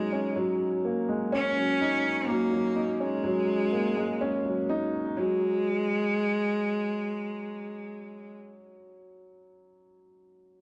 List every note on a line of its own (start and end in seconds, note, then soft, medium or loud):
0.00 0.36 F#3 medium
0.00 0.62 G#3 medium
0.00 1.09 G#3 medium
0.00 0.12 C#4 medium
0.00 1.81 D#4 loud
0.12 0.26 C#4 medium
0.36 0.59 F#3 loud
0.85 1.08 A#3 medium
1.09 1.32 G#3 medium
1.32 1.56 C#4 loud
1.32 2.31 C#4 loud
1.57 1.80 F#3 medium
1.81 2.04 D#4 loud
2.29 2.51 F#3 medium
2.29 3.02 A#3 loud
2.52 2.67 F#3 medium
2.76 2.90 D#4 medium
3.00 4.69 G#3 loud
3.00 3.14 C#4 medium
3.24 3.47 F#3 loud
3.72 3.96 A#3 medium
3.97 4.20 G#3 medium
4.21 4.44 C#4 loud
4.45 4.68 F#3 medium
4.69 4.92 D#4 loud
5.17 5.39 F#3 medium
5.17 8.35 G#3 loud